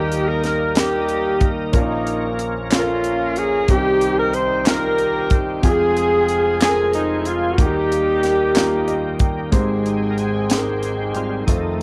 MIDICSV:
0, 0, Header, 1, 7, 480
1, 0, Start_track
1, 0, Key_signature, -4, "major"
1, 0, Tempo, 649351
1, 1288, Time_signature, 6, 3, 24, 8
1, 8741, End_track
2, 0, Start_track
2, 0, Title_t, "Alto saxophone"
2, 0, Program_c, 0, 65
2, 0, Note_on_c, 0, 67, 86
2, 209, Note_on_c, 0, 70, 91
2, 220, Note_off_c, 0, 67, 0
2, 324, Note_off_c, 0, 70, 0
2, 328, Note_on_c, 0, 70, 81
2, 572, Note_on_c, 0, 67, 87
2, 583, Note_off_c, 0, 70, 0
2, 1110, Note_off_c, 0, 67, 0
2, 1304, Note_on_c, 0, 63, 67
2, 1746, Note_off_c, 0, 63, 0
2, 2033, Note_on_c, 0, 65, 82
2, 2502, Note_on_c, 0, 68, 89
2, 2513, Note_off_c, 0, 65, 0
2, 2738, Note_on_c, 0, 67, 98
2, 2749, Note_off_c, 0, 68, 0
2, 3093, Note_off_c, 0, 67, 0
2, 3099, Note_on_c, 0, 70, 88
2, 3212, Note_on_c, 0, 72, 81
2, 3223, Note_off_c, 0, 70, 0
2, 3407, Note_off_c, 0, 72, 0
2, 3407, Note_on_c, 0, 72, 69
2, 3458, Note_on_c, 0, 70, 85
2, 3469, Note_off_c, 0, 72, 0
2, 3993, Note_off_c, 0, 70, 0
2, 4173, Note_on_c, 0, 68, 92
2, 4861, Note_off_c, 0, 68, 0
2, 4893, Note_on_c, 0, 68, 95
2, 5113, Note_off_c, 0, 68, 0
2, 5134, Note_on_c, 0, 63, 78
2, 5321, Note_on_c, 0, 64, 58
2, 5332, Note_off_c, 0, 63, 0
2, 5378, Note_on_c, 0, 65, 74
2, 5389, Note_off_c, 0, 64, 0
2, 5554, Note_on_c, 0, 66, 61
2, 5565, Note_off_c, 0, 65, 0
2, 5619, Note_on_c, 0, 67, 86
2, 5630, Note_off_c, 0, 66, 0
2, 6812, Note_off_c, 0, 67, 0
2, 8741, End_track
3, 0, Start_track
3, 0, Title_t, "Horn section"
3, 0, Program_c, 1, 61
3, 0, Note_on_c, 1, 58, 64
3, 0, Note_on_c, 1, 63, 68
3, 0, Note_on_c, 1, 67, 80
3, 211, Note_off_c, 1, 67, 0
3, 217, Note_on_c, 1, 70, 86
3, 324, Note_off_c, 1, 70, 0
3, 334, Note_on_c, 1, 70, 89
3, 545, Note_off_c, 1, 63, 0
3, 546, Note_off_c, 1, 58, 0
3, 554, Note_off_c, 1, 70, 0
3, 581, Note_on_c, 1, 58, 69
3, 583, Note_on_c, 1, 63, 62
3, 586, Note_on_c, 1, 67, 95
3, 1117, Note_off_c, 1, 67, 0
3, 1265, Note_off_c, 1, 58, 0
3, 1266, Note_off_c, 1, 63, 0
3, 1301, Note_on_c, 1, 58, 52
3, 1303, Note_on_c, 1, 63, 66
3, 1746, Note_off_c, 1, 63, 0
3, 1899, Note_off_c, 1, 58, 0
3, 2024, Note_on_c, 1, 61, 64
3, 2028, Note_on_c, 1, 58, 62
3, 2043, Note_on_c, 1, 65, 80
3, 2476, Note_off_c, 1, 65, 0
3, 2504, Note_on_c, 1, 68, 84
3, 2707, Note_off_c, 1, 61, 0
3, 2709, Note_off_c, 1, 58, 0
3, 2736, Note_off_c, 1, 68, 0
3, 2739, Note_on_c, 1, 60, 61
3, 2742, Note_on_c, 1, 63, 64
3, 2751, Note_on_c, 1, 67, 86
3, 3095, Note_on_c, 1, 70, 81
3, 3099, Note_off_c, 1, 67, 0
3, 3211, Note_off_c, 1, 70, 0
3, 3219, Note_on_c, 1, 72, 90
3, 3424, Note_off_c, 1, 60, 0
3, 3425, Note_off_c, 1, 63, 0
3, 3437, Note_off_c, 1, 72, 0
3, 3450, Note_on_c, 1, 63, 71
3, 3455, Note_on_c, 1, 67, 72
3, 3456, Note_on_c, 1, 70, 97
3, 3992, Note_off_c, 1, 70, 0
3, 4139, Note_off_c, 1, 63, 0
3, 4142, Note_off_c, 1, 67, 0
3, 4169, Note_on_c, 1, 68, 93
3, 4171, Note_on_c, 1, 60, 70
3, 4173, Note_on_c, 1, 65, 70
3, 4859, Note_off_c, 1, 60, 0
3, 4859, Note_off_c, 1, 68, 0
3, 4861, Note_off_c, 1, 65, 0
3, 4890, Note_on_c, 1, 68, 102
3, 5112, Note_off_c, 1, 68, 0
3, 5139, Note_on_c, 1, 63, 86
3, 5373, Note_off_c, 1, 63, 0
3, 5377, Note_on_c, 1, 65, 83
3, 5612, Note_off_c, 1, 65, 0
3, 5618, Note_on_c, 1, 67, 82
3, 5622, Note_on_c, 1, 58, 62
3, 5624, Note_on_c, 1, 63, 64
3, 6785, Note_off_c, 1, 58, 0
3, 6785, Note_off_c, 1, 63, 0
3, 6812, Note_off_c, 1, 67, 0
3, 8741, End_track
4, 0, Start_track
4, 0, Title_t, "Grand piano"
4, 0, Program_c, 2, 0
4, 0, Control_c, 2, 64, 127
4, 0, Note_on_c, 2, 39, 51
4, 0, Note_on_c, 2, 51, 52
4, 0, Note_on_c, 2, 63, 64
4, 0, Note_on_c, 2, 67, 62
4, 0, Note_on_c, 2, 70, 75
4, 420, Note_off_c, 2, 63, 0
4, 423, Note_off_c, 2, 67, 0
4, 426, Note_off_c, 2, 70, 0
4, 551, Note_on_c, 2, 63, 59
4, 556, Note_on_c, 2, 67, 55
4, 563, Note_on_c, 2, 70, 64
4, 1141, Note_off_c, 2, 63, 0
4, 1143, Note_off_c, 2, 67, 0
4, 1147, Note_off_c, 2, 70, 0
4, 1251, Note_off_c, 2, 39, 0
4, 1253, Note_off_c, 2, 51, 0
4, 1270, Note_on_c, 2, 61, 63
4, 1281, Note_on_c, 2, 34, 59
4, 1281, Note_on_c, 2, 46, 58
4, 1282, Note_on_c, 2, 65, 65
4, 1286, Note_on_c, 2, 70, 70
4, 1298, Control_c, 2, 64, 0
4, 1411, Control_c, 2, 64, 127
4, 1861, Note_off_c, 2, 61, 0
4, 1867, Note_off_c, 2, 65, 0
4, 1869, Note_off_c, 2, 70, 0
4, 1997, Note_on_c, 2, 61, 64
4, 2005, Note_on_c, 2, 65, 58
4, 2013, Note_on_c, 2, 69, 57
4, 2059, Note_off_c, 2, 69, 0
4, 2061, Note_on_c, 2, 70, 72
4, 2584, Note_off_c, 2, 61, 0
4, 2588, Note_off_c, 2, 65, 0
4, 2616, Note_off_c, 2, 70, 0
4, 2695, Note_off_c, 2, 34, 0
4, 2695, Note_off_c, 2, 46, 0
4, 2723, Note_on_c, 2, 60, 69
4, 2728, Note_on_c, 2, 61, 53
4, 2729, Note_on_c, 2, 36, 60
4, 2730, Note_on_c, 2, 48, 50
4, 2734, Note_on_c, 2, 67, 69
4, 2738, Control_c, 2, 64, 0
4, 2776, Note_on_c, 2, 63, 67
4, 2777, Note_off_c, 2, 61, 0
4, 2845, Control_c, 2, 64, 127
4, 3307, Note_off_c, 2, 60, 0
4, 3313, Note_off_c, 2, 67, 0
4, 3334, Note_off_c, 2, 63, 0
4, 3435, Note_on_c, 2, 60, 64
4, 3438, Note_on_c, 2, 63, 60
4, 3445, Note_on_c, 2, 65, 69
4, 4023, Note_off_c, 2, 60, 0
4, 4025, Note_off_c, 2, 63, 0
4, 4028, Note_off_c, 2, 65, 0
4, 4139, Note_off_c, 2, 36, 0
4, 4139, Note_off_c, 2, 48, 0
4, 4156, Note_on_c, 2, 60, 69
4, 4163, Note_on_c, 2, 29, 60
4, 4164, Note_on_c, 2, 41, 63
4, 4166, Note_on_c, 2, 65, 64
4, 4172, Note_on_c, 2, 68, 84
4, 4178, Control_c, 2, 64, 0
4, 4288, Control_c, 2, 64, 127
4, 4743, Note_off_c, 2, 60, 0
4, 4749, Note_off_c, 2, 65, 0
4, 4751, Note_off_c, 2, 68, 0
4, 4883, Note_on_c, 2, 60, 70
4, 4888, Note_on_c, 2, 65, 59
4, 4894, Note_on_c, 2, 69, 57
4, 4939, Note_off_c, 2, 69, 0
4, 4945, Note_on_c, 2, 70, 67
4, 5467, Note_off_c, 2, 60, 0
4, 5469, Note_off_c, 2, 65, 0
4, 5498, Note_off_c, 2, 70, 0
4, 5575, Note_off_c, 2, 29, 0
4, 5576, Note_off_c, 2, 41, 0
4, 5606, Note_on_c, 2, 58, 72
4, 5607, Note_on_c, 2, 51, 62
4, 5609, Note_on_c, 2, 63, 64
4, 5611, Note_on_c, 2, 39, 51
4, 5612, Note_on_c, 2, 66, 65
4, 5617, Control_c, 2, 64, 0
4, 5658, Note_off_c, 2, 66, 0
4, 5662, Note_on_c, 2, 67, 80
4, 5760, Control_c, 2, 64, 127
4, 6188, Note_off_c, 2, 58, 0
4, 6190, Note_off_c, 2, 63, 0
4, 6216, Note_off_c, 2, 67, 0
4, 6320, Note_on_c, 2, 58, 82
4, 6325, Note_on_c, 2, 63, 73
4, 6332, Note_on_c, 2, 65, 89
4, 6561, Note_on_c, 2, 75, 65
4, 6787, Note_off_c, 2, 75, 0
4, 6800, Note_on_c, 2, 79, 59
4, 6905, Note_off_c, 2, 58, 0
4, 6908, Note_off_c, 2, 63, 0
4, 6911, Note_off_c, 2, 65, 0
4, 7017, Note_off_c, 2, 51, 0
4, 7019, Note_off_c, 2, 39, 0
4, 7026, Note_off_c, 2, 79, 0
4, 7034, Note_on_c, 2, 56, 72
4, 7035, Note_on_c, 2, 60, 70
4, 7038, Note_on_c, 2, 32, 60
4, 7038, Note_on_c, 2, 63, 64
4, 7039, Note_on_c, 2, 44, 57
4, 7040, Note_on_c, 2, 67, 63
4, 7044, Note_on_c, 2, 72, 82
4, 7056, Control_c, 2, 64, 0
4, 7190, Control_c, 2, 64, 127
4, 7622, Note_off_c, 2, 56, 0
4, 7622, Note_off_c, 2, 60, 0
4, 7624, Note_off_c, 2, 63, 0
4, 7625, Note_off_c, 2, 67, 0
4, 7627, Note_off_c, 2, 72, 0
4, 7760, Note_on_c, 2, 56, 57
4, 7761, Note_on_c, 2, 60, 55
4, 7765, Note_on_c, 2, 63, 55
4, 7768, Note_on_c, 2, 67, 56
4, 7773, Note_on_c, 2, 68, 53
4, 7818, Note_off_c, 2, 68, 0
4, 7819, Note_on_c, 2, 70, 65
4, 8344, Note_off_c, 2, 56, 0
4, 8345, Note_off_c, 2, 60, 0
4, 8347, Note_off_c, 2, 63, 0
4, 8349, Note_off_c, 2, 67, 0
4, 8374, Note_off_c, 2, 70, 0
4, 8452, Note_off_c, 2, 32, 0
4, 8452, Note_off_c, 2, 44, 0
4, 8485, Note_on_c, 2, 57, 70
4, 8486, Note_on_c, 2, 60, 64
4, 8487, Note_on_c, 2, 41, 50
4, 8489, Note_on_c, 2, 29, 53
4, 8489, Note_on_c, 2, 63, 59
4, 8493, Note_on_c, 2, 65, 62
4, 8494, Control_c, 2, 64, 0
4, 8496, Note_on_c, 2, 72, 73
4, 8630, Control_c, 2, 64, 127
4, 8741, Note_off_c, 2, 29, 0
4, 8741, Note_off_c, 2, 41, 0
4, 8741, Note_off_c, 2, 57, 0
4, 8741, Note_off_c, 2, 60, 0
4, 8741, Note_off_c, 2, 63, 0
4, 8741, Note_off_c, 2, 65, 0
4, 8741, Note_off_c, 2, 72, 0
4, 8741, End_track
5, 0, Start_track
5, 0, Title_t, "String section"
5, 0, Program_c, 3, 48
5, 7035, Note_on_c, 3, 63, 51
5, 7037, Note_on_c, 3, 60, 57
5, 7038, Note_on_c, 3, 79, 60
5, 7042, Note_on_c, 3, 51, 51
5, 8467, Note_off_c, 3, 79, 0
5, 8469, Note_off_c, 3, 51, 0
5, 8472, Note_on_c, 3, 57, 54
5, 8475, Note_on_c, 3, 65, 65
5, 8741, Note_off_c, 3, 57, 0
5, 8741, Note_off_c, 3, 60, 0
5, 8741, Note_off_c, 3, 63, 0
5, 8741, Note_off_c, 3, 65, 0
5, 8741, End_track
6, 0, Start_track
6, 0, Title_t, "Tonewheel organ"
6, 0, Program_c, 4, 16
6, 0, Note_on_c, 4, 55, 59
6, 0, Note_on_c, 4, 58, 52
6, 0, Note_on_c, 4, 63, 57
6, 0, Note_on_c, 4, 70, 71
6, 1270, Note_off_c, 4, 55, 0
6, 1270, Note_off_c, 4, 63, 0
6, 1279, Note_on_c, 4, 53, 56
6, 1281, Note_on_c, 4, 61, 55
6, 2696, Note_off_c, 4, 70, 0
6, 2697, Note_off_c, 4, 58, 0
6, 2709, Note_off_c, 4, 53, 0
6, 2710, Note_off_c, 4, 61, 0
6, 2723, Note_on_c, 4, 51, 60
6, 2723, Note_on_c, 4, 55, 58
6, 2724, Note_on_c, 4, 67, 65
6, 2727, Note_on_c, 4, 60, 52
6, 4151, Note_off_c, 4, 51, 0
6, 4151, Note_off_c, 4, 55, 0
6, 4151, Note_off_c, 4, 67, 0
6, 4164, Note_on_c, 4, 56, 54
6, 4165, Note_on_c, 4, 53, 62
6, 4165, Note_on_c, 4, 68, 63
6, 5578, Note_off_c, 4, 60, 0
6, 5591, Note_off_c, 4, 56, 0
6, 5591, Note_off_c, 4, 68, 0
6, 5592, Note_off_c, 4, 53, 0
6, 5596, Note_on_c, 4, 51, 62
6, 5596, Note_on_c, 4, 67, 64
6, 5597, Note_on_c, 4, 58, 56
6, 5599, Note_on_c, 4, 55, 56
6, 7026, Note_off_c, 4, 51, 0
6, 7026, Note_off_c, 4, 67, 0
6, 7027, Note_off_c, 4, 58, 0
6, 7028, Note_off_c, 4, 55, 0
6, 7030, Note_on_c, 4, 44, 41
6, 7035, Note_on_c, 4, 56, 39
6, 7039, Note_on_c, 4, 60, 46
6, 7297, Note_on_c, 4, 63, 64
6, 7469, Note_on_c, 4, 70, 57
6, 7485, Note_off_c, 4, 63, 0
6, 7524, Note_off_c, 4, 70, 0
6, 7536, Note_on_c, 4, 68, 89
6, 7777, Note_on_c, 4, 67, 81
6, 7778, Note_off_c, 4, 68, 0
6, 8233, Note_off_c, 4, 44, 0
6, 8242, Note_off_c, 4, 60, 0
6, 8242, Note_on_c, 4, 44, 39
6, 8246, Note_on_c, 4, 55, 40
6, 8251, Note_on_c, 4, 60, 46
6, 8253, Note_on_c, 4, 65, 77
6, 8265, Note_off_c, 4, 67, 0
6, 8359, Note_off_c, 4, 65, 0
6, 8450, Note_off_c, 4, 56, 0
6, 8459, Note_off_c, 4, 44, 0
6, 8462, Note_off_c, 4, 55, 0
6, 8465, Note_off_c, 4, 60, 0
6, 8470, Note_on_c, 4, 41, 48
6, 8474, Note_on_c, 4, 51, 43
6, 8479, Note_on_c, 4, 63, 70
6, 8480, Note_on_c, 4, 57, 48
6, 8741, Note_off_c, 4, 41, 0
6, 8741, Note_off_c, 4, 51, 0
6, 8741, Note_off_c, 4, 57, 0
6, 8741, Note_off_c, 4, 63, 0
6, 8741, End_track
7, 0, Start_track
7, 0, Title_t, "Drums"
7, 86, Note_on_c, 9, 42, 54
7, 160, Note_off_c, 9, 42, 0
7, 322, Note_on_c, 9, 42, 48
7, 333, Note_on_c, 9, 38, 33
7, 396, Note_off_c, 9, 42, 0
7, 407, Note_off_c, 9, 38, 0
7, 557, Note_on_c, 9, 42, 85
7, 570, Note_on_c, 9, 38, 96
7, 631, Note_off_c, 9, 42, 0
7, 644, Note_off_c, 9, 38, 0
7, 802, Note_on_c, 9, 42, 42
7, 876, Note_off_c, 9, 42, 0
7, 1039, Note_on_c, 9, 42, 47
7, 1042, Note_on_c, 9, 36, 85
7, 1113, Note_off_c, 9, 42, 0
7, 1116, Note_off_c, 9, 36, 0
7, 1280, Note_on_c, 9, 42, 77
7, 1283, Note_on_c, 9, 36, 80
7, 1353, Note_off_c, 9, 42, 0
7, 1357, Note_off_c, 9, 36, 0
7, 1528, Note_on_c, 9, 42, 49
7, 1602, Note_off_c, 9, 42, 0
7, 1766, Note_on_c, 9, 42, 50
7, 1840, Note_off_c, 9, 42, 0
7, 2001, Note_on_c, 9, 42, 96
7, 2007, Note_on_c, 9, 39, 76
7, 2014, Note_on_c, 9, 38, 97
7, 2075, Note_off_c, 9, 42, 0
7, 2081, Note_off_c, 9, 39, 0
7, 2088, Note_off_c, 9, 38, 0
7, 2246, Note_on_c, 9, 42, 49
7, 2320, Note_off_c, 9, 42, 0
7, 2483, Note_on_c, 9, 42, 50
7, 2557, Note_off_c, 9, 42, 0
7, 2722, Note_on_c, 9, 42, 73
7, 2725, Note_on_c, 9, 36, 89
7, 2796, Note_off_c, 9, 42, 0
7, 2798, Note_off_c, 9, 36, 0
7, 2966, Note_on_c, 9, 42, 56
7, 3040, Note_off_c, 9, 42, 0
7, 3204, Note_on_c, 9, 42, 46
7, 3278, Note_off_c, 9, 42, 0
7, 3440, Note_on_c, 9, 42, 90
7, 3446, Note_on_c, 9, 39, 79
7, 3452, Note_on_c, 9, 38, 99
7, 3514, Note_off_c, 9, 42, 0
7, 3520, Note_off_c, 9, 39, 0
7, 3526, Note_off_c, 9, 38, 0
7, 3684, Note_on_c, 9, 42, 43
7, 3758, Note_off_c, 9, 42, 0
7, 3919, Note_on_c, 9, 42, 54
7, 3924, Note_on_c, 9, 36, 88
7, 3993, Note_off_c, 9, 42, 0
7, 3998, Note_off_c, 9, 36, 0
7, 4163, Note_on_c, 9, 42, 74
7, 4165, Note_on_c, 9, 36, 85
7, 4237, Note_off_c, 9, 42, 0
7, 4239, Note_off_c, 9, 36, 0
7, 4409, Note_on_c, 9, 42, 46
7, 4483, Note_off_c, 9, 42, 0
7, 4645, Note_on_c, 9, 42, 50
7, 4719, Note_off_c, 9, 42, 0
7, 4883, Note_on_c, 9, 42, 84
7, 4891, Note_on_c, 9, 39, 79
7, 4896, Note_on_c, 9, 38, 96
7, 4957, Note_off_c, 9, 42, 0
7, 4965, Note_off_c, 9, 39, 0
7, 4970, Note_off_c, 9, 38, 0
7, 5126, Note_on_c, 9, 42, 51
7, 5200, Note_off_c, 9, 42, 0
7, 5362, Note_on_c, 9, 42, 51
7, 5435, Note_off_c, 9, 42, 0
7, 5605, Note_on_c, 9, 36, 92
7, 5607, Note_on_c, 9, 42, 73
7, 5679, Note_off_c, 9, 36, 0
7, 5680, Note_off_c, 9, 42, 0
7, 5854, Note_on_c, 9, 42, 56
7, 5928, Note_off_c, 9, 42, 0
7, 6084, Note_on_c, 9, 42, 47
7, 6095, Note_on_c, 9, 38, 32
7, 6158, Note_off_c, 9, 42, 0
7, 6169, Note_off_c, 9, 38, 0
7, 6322, Note_on_c, 9, 42, 91
7, 6326, Note_on_c, 9, 39, 77
7, 6334, Note_on_c, 9, 38, 89
7, 6396, Note_off_c, 9, 42, 0
7, 6400, Note_off_c, 9, 39, 0
7, 6408, Note_off_c, 9, 38, 0
7, 6562, Note_on_c, 9, 42, 47
7, 6636, Note_off_c, 9, 42, 0
7, 6796, Note_on_c, 9, 42, 54
7, 6801, Note_on_c, 9, 36, 83
7, 6870, Note_off_c, 9, 42, 0
7, 6874, Note_off_c, 9, 36, 0
7, 7039, Note_on_c, 9, 42, 78
7, 7041, Note_on_c, 9, 36, 86
7, 7113, Note_off_c, 9, 42, 0
7, 7115, Note_off_c, 9, 36, 0
7, 7287, Note_on_c, 9, 42, 42
7, 7361, Note_off_c, 9, 42, 0
7, 7523, Note_on_c, 9, 42, 43
7, 7597, Note_off_c, 9, 42, 0
7, 7759, Note_on_c, 9, 42, 89
7, 7772, Note_on_c, 9, 38, 85
7, 7833, Note_off_c, 9, 42, 0
7, 7845, Note_off_c, 9, 38, 0
7, 8003, Note_on_c, 9, 42, 43
7, 8077, Note_off_c, 9, 42, 0
7, 8238, Note_on_c, 9, 42, 43
7, 8312, Note_off_c, 9, 42, 0
7, 8484, Note_on_c, 9, 36, 77
7, 8485, Note_on_c, 9, 42, 75
7, 8558, Note_off_c, 9, 36, 0
7, 8558, Note_off_c, 9, 42, 0
7, 8741, End_track
0, 0, End_of_file